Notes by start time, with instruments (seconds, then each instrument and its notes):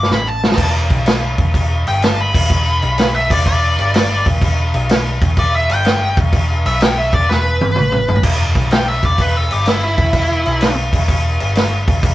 Already playing: lead electric guitar D6
0.03 snare
0.11 picked electric bass A1, lead electric guitar B5, snare
0.27 lead electric guitar A5
0.44 snare
0.52 snare
0.58 picked electric bass E1, kick, crash
0.90 picked electric bass B1, kick, crash
1.06 snare, crash
1.38 picked electric bass E1, kick, crash
1.54 picked electric bass E1, kick, crash
1.86 picked electric bass G1, lead electric guitar G5, crash
2.02 lead electric guitar A5, snare, crash
2.21 lead electric guitar B5
2.34 picked electric bass E1, kick, crash
2.50 picked electric bass E1, kick, crash
2.82 picked electric bass B1, crash
2.98 snare, crash
3.15 lead electric guitar E5
3.30 picked electric bass E1, lead electric guitar D5, kick, crash
3.46 picked electric bass E1, lead electric guitar D5, kick, crash
3.78 picked electric bass G1, crash
3.94 snare, crash
4.26 picked electric bass E1, kick, crash
4.42 picked electric bass E1, kick, crash
4.74 picked electric bass B1, crash
4.89 snare, crash
5.22 picked electric bass E1, kick, crash
5.37 picked electric bass E1, lead electric guitar D5, kick, crash
5.55 lead electric guitar E5
5.69 picked electric bass G1, lead electric guitar G5, crash
5.85 snare, crash
6.17 picked electric bass E1, kick, crash
6.33 picked electric bass E1, kick, crash
6.65 picked electric bass B1, lead electric guitar E5, crash
6.80 lead electric guitar G5, snare, crash
6.98 lead electric guitar E5
7.13 picked electric bass E1, lead electric guitar D5, kick, crash
7.29 picked electric bass E1, lead electric guitar B4, snare
7.61 picked electric bass G1, high tom
7.76 picked electric bass A1, mid tom
7.92 mid tom
8.08 floor tom
8.15 floor tom
8.23 picked electric bass E1, kick, crash
8.55 picked electric bass B1, kick, crash
8.71 lead electric guitar G5, snare, crash
8.88 lead electric guitar E5
9.03 picked electric bass E1, lead electric guitar D5, kick, crash
9.18 picked electric bass E1, lead electric guitar B4, kick, crash
9.37 lead electric guitar A4
9.51 picked electric bass G1, lead electric guitar G4, crash
9.66 lead electric guitar E4, snare, crash
9.83 lead electric guitar E4
9.98 picked electric bass E1, kick, crash
10.13 picked electric bass E1, kick, crash
10.45 picked electric bass B1, crash
10.61 snare, crash
10.93 picked electric bass E1, kick, crash
11.08 picked electric bass E1, kick, crash
11.40 picked electric bass G1, crash
11.55 snare, crash
11.88 picked electric bass E1, kick, crash
12.03 picked electric bass E1, kick, crash